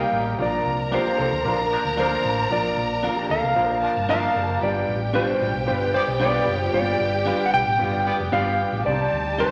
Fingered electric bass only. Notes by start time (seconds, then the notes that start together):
0.12 A1
0.39 A#1
0.65 C2
1.19 C2
1.32 D2
1.45 A#1
1.85 D2
2.25 A1
2.51 A#1
2.77 A#1
3.30 D2
3.42 C2
3.57 A#1
3.96 G1
4.36 F#1
4.62 G1
4.88 A1
5.41 A1
5.55 B1
5.68 G1
6.08 B1
6.47 F#1
6.74 G1
7.00 G1
7.54 B1
7.66 A1
7.80 G1
8.20 F1
8.33 G1
8.72 A1
8.86 C2
9.12 D2